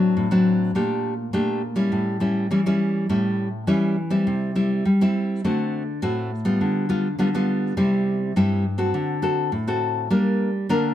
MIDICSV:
0, 0, Header, 1, 2, 480
1, 0, Start_track
1, 0, Tempo, 585366
1, 1576, Time_signature, 4, 2, 24, 8
1, 8971, End_track
2, 0, Start_track
2, 0, Title_t, "Nylon-string guitar"
2, 0, Program_c, 0, 24
2, 0, Note_on_c, 0, 45, 64
2, 0, Note_on_c, 0, 54, 61
2, 0, Note_on_c, 0, 60, 51
2, 0, Note_on_c, 0, 62, 56
2, 109, Note_off_c, 0, 45, 0
2, 137, Note_on_c, 0, 45, 71
2, 211, Note_off_c, 0, 54, 0
2, 213, Note_off_c, 0, 60, 0
2, 214, Note_off_c, 0, 62, 0
2, 255, Note_on_c, 0, 54, 59
2, 260, Note_on_c, 0, 60, 66
2, 261, Note_on_c, 0, 62, 76
2, 576, Note_off_c, 0, 54, 0
2, 578, Note_off_c, 0, 60, 0
2, 579, Note_off_c, 0, 62, 0
2, 591, Note_off_c, 0, 45, 0
2, 614, Note_on_c, 0, 46, 71
2, 619, Note_on_c, 0, 57, 49
2, 619, Note_on_c, 0, 62, 52
2, 623, Note_on_c, 0, 67, 62
2, 925, Note_off_c, 0, 57, 0
2, 926, Note_off_c, 0, 62, 0
2, 927, Note_off_c, 0, 67, 0
2, 1071, Note_off_c, 0, 46, 0
2, 1091, Note_on_c, 0, 46, 70
2, 1092, Note_on_c, 0, 57, 65
2, 1096, Note_on_c, 0, 62, 58
2, 1100, Note_on_c, 0, 67, 65
2, 1318, Note_off_c, 0, 57, 0
2, 1321, Note_off_c, 0, 62, 0
2, 1323, Note_off_c, 0, 67, 0
2, 1440, Note_on_c, 0, 55, 52
2, 1444, Note_on_c, 0, 61, 54
2, 1447, Note_on_c, 0, 64, 65
2, 1550, Note_off_c, 0, 46, 0
2, 1573, Note_on_c, 0, 45, 62
2, 1771, Note_off_c, 0, 55, 0
2, 1772, Note_off_c, 0, 61, 0
2, 1774, Note_off_c, 0, 64, 0
2, 1806, Note_on_c, 0, 55, 49
2, 1811, Note_on_c, 0, 64, 53
2, 1812, Note_on_c, 0, 61, 52
2, 2014, Note_off_c, 0, 55, 0
2, 2015, Note_off_c, 0, 61, 0
2, 2016, Note_off_c, 0, 64, 0
2, 2032, Note_off_c, 0, 45, 0
2, 2055, Note_on_c, 0, 52, 73
2, 2058, Note_on_c, 0, 55, 58
2, 2061, Note_on_c, 0, 61, 59
2, 2061, Note_on_c, 0, 64, 67
2, 2130, Note_off_c, 0, 55, 0
2, 2130, Note_off_c, 0, 61, 0
2, 2131, Note_off_c, 0, 64, 0
2, 2182, Note_on_c, 0, 55, 62
2, 2187, Note_on_c, 0, 61, 68
2, 2188, Note_on_c, 0, 64, 73
2, 2502, Note_off_c, 0, 55, 0
2, 2503, Note_off_c, 0, 61, 0
2, 2505, Note_off_c, 0, 64, 0
2, 2513, Note_off_c, 0, 52, 0
2, 2537, Note_on_c, 0, 55, 58
2, 2538, Note_on_c, 0, 45, 62
2, 2540, Note_on_c, 0, 61, 54
2, 2544, Note_on_c, 0, 64, 58
2, 2847, Note_off_c, 0, 55, 0
2, 2848, Note_off_c, 0, 61, 0
2, 2851, Note_off_c, 0, 64, 0
2, 2995, Note_off_c, 0, 45, 0
2, 3011, Note_on_c, 0, 52, 75
2, 3012, Note_on_c, 0, 55, 59
2, 3016, Note_on_c, 0, 61, 60
2, 3021, Note_on_c, 0, 64, 64
2, 3240, Note_off_c, 0, 55, 0
2, 3243, Note_off_c, 0, 61, 0
2, 3244, Note_off_c, 0, 64, 0
2, 3365, Note_on_c, 0, 55, 59
2, 3369, Note_on_c, 0, 60, 55
2, 3372, Note_on_c, 0, 64, 56
2, 3472, Note_off_c, 0, 52, 0
2, 3500, Note_on_c, 0, 48, 69
2, 3694, Note_off_c, 0, 55, 0
2, 3695, Note_off_c, 0, 60, 0
2, 3697, Note_off_c, 0, 64, 0
2, 3735, Note_on_c, 0, 55, 55
2, 3738, Note_on_c, 0, 60, 51
2, 3739, Note_on_c, 0, 64, 58
2, 3956, Note_off_c, 0, 48, 0
2, 3962, Note_off_c, 0, 55, 0
2, 3963, Note_off_c, 0, 60, 0
2, 3964, Note_off_c, 0, 64, 0
2, 3980, Note_on_c, 0, 55, 71
2, 4100, Note_off_c, 0, 55, 0
2, 4110, Note_on_c, 0, 55, 62
2, 4115, Note_on_c, 0, 60, 66
2, 4118, Note_on_c, 0, 64, 72
2, 4426, Note_off_c, 0, 55, 0
2, 4429, Note_off_c, 0, 60, 0
2, 4430, Note_off_c, 0, 64, 0
2, 4464, Note_on_c, 0, 50, 67
2, 4467, Note_on_c, 0, 57, 62
2, 4467, Note_on_c, 0, 60, 48
2, 4472, Note_on_c, 0, 66, 57
2, 4771, Note_off_c, 0, 57, 0
2, 4773, Note_off_c, 0, 60, 0
2, 4774, Note_off_c, 0, 66, 0
2, 4918, Note_off_c, 0, 50, 0
2, 4938, Note_on_c, 0, 57, 64
2, 4939, Note_on_c, 0, 45, 80
2, 4942, Note_on_c, 0, 60, 57
2, 4946, Note_on_c, 0, 66, 70
2, 5163, Note_off_c, 0, 57, 0
2, 5165, Note_off_c, 0, 60, 0
2, 5167, Note_off_c, 0, 66, 0
2, 5289, Note_on_c, 0, 55, 56
2, 5289, Note_on_c, 0, 59, 55
2, 5295, Note_on_c, 0, 65, 61
2, 5395, Note_off_c, 0, 45, 0
2, 5420, Note_on_c, 0, 50, 66
2, 5615, Note_off_c, 0, 55, 0
2, 5615, Note_off_c, 0, 59, 0
2, 5618, Note_off_c, 0, 65, 0
2, 5650, Note_on_c, 0, 55, 54
2, 5655, Note_on_c, 0, 59, 59
2, 5656, Note_on_c, 0, 65, 66
2, 5795, Note_off_c, 0, 55, 0
2, 5796, Note_off_c, 0, 59, 0
2, 5798, Note_off_c, 0, 65, 0
2, 5874, Note_off_c, 0, 50, 0
2, 5892, Note_on_c, 0, 50, 74
2, 5898, Note_on_c, 0, 55, 57
2, 5898, Note_on_c, 0, 59, 57
2, 5903, Note_on_c, 0, 65, 63
2, 5968, Note_off_c, 0, 55, 0
2, 5970, Note_off_c, 0, 59, 0
2, 5971, Note_off_c, 0, 65, 0
2, 6023, Note_on_c, 0, 55, 56
2, 6026, Note_on_c, 0, 59, 67
2, 6030, Note_on_c, 0, 65, 71
2, 6342, Note_off_c, 0, 55, 0
2, 6342, Note_off_c, 0, 59, 0
2, 6343, Note_off_c, 0, 65, 0
2, 6350, Note_off_c, 0, 50, 0
2, 6371, Note_on_c, 0, 48, 74
2, 6372, Note_on_c, 0, 55, 62
2, 6375, Note_on_c, 0, 60, 60
2, 6381, Note_on_c, 0, 64, 62
2, 6814, Note_off_c, 0, 55, 0
2, 6817, Note_off_c, 0, 60, 0
2, 6818, Note_off_c, 0, 64, 0
2, 6829, Note_off_c, 0, 48, 0
2, 6856, Note_on_c, 0, 43, 76
2, 6859, Note_on_c, 0, 55, 62
2, 6861, Note_on_c, 0, 60, 66
2, 6864, Note_on_c, 0, 64, 70
2, 7081, Note_off_c, 0, 55, 0
2, 7081, Note_off_c, 0, 60, 0
2, 7084, Note_off_c, 0, 64, 0
2, 7199, Note_on_c, 0, 60, 55
2, 7202, Note_on_c, 0, 66, 57
2, 7207, Note_on_c, 0, 69, 63
2, 7311, Note_off_c, 0, 43, 0
2, 7331, Note_on_c, 0, 50, 72
2, 7527, Note_off_c, 0, 60, 0
2, 7528, Note_off_c, 0, 66, 0
2, 7531, Note_off_c, 0, 69, 0
2, 7562, Note_on_c, 0, 60, 52
2, 7565, Note_on_c, 0, 66, 56
2, 7570, Note_on_c, 0, 69, 61
2, 7787, Note_off_c, 0, 50, 0
2, 7792, Note_off_c, 0, 60, 0
2, 7792, Note_off_c, 0, 66, 0
2, 7796, Note_off_c, 0, 69, 0
2, 7807, Note_on_c, 0, 45, 74
2, 7933, Note_on_c, 0, 60, 62
2, 7936, Note_on_c, 0, 66, 59
2, 7941, Note_on_c, 0, 69, 69
2, 8254, Note_off_c, 0, 60, 0
2, 8254, Note_off_c, 0, 66, 0
2, 8255, Note_off_c, 0, 69, 0
2, 8264, Note_off_c, 0, 45, 0
2, 8286, Note_on_c, 0, 55, 63
2, 8286, Note_on_c, 0, 58, 60
2, 8291, Note_on_c, 0, 62, 52
2, 8293, Note_on_c, 0, 70, 57
2, 8595, Note_off_c, 0, 58, 0
2, 8599, Note_off_c, 0, 62, 0
2, 8599, Note_off_c, 0, 70, 0
2, 8743, Note_off_c, 0, 55, 0
2, 8769, Note_on_c, 0, 50, 76
2, 8772, Note_on_c, 0, 58, 65
2, 8774, Note_on_c, 0, 62, 62
2, 8776, Note_on_c, 0, 70, 73
2, 8971, Note_off_c, 0, 50, 0
2, 8971, Note_off_c, 0, 58, 0
2, 8971, Note_off_c, 0, 62, 0
2, 8971, Note_off_c, 0, 70, 0
2, 8971, End_track
0, 0, End_of_file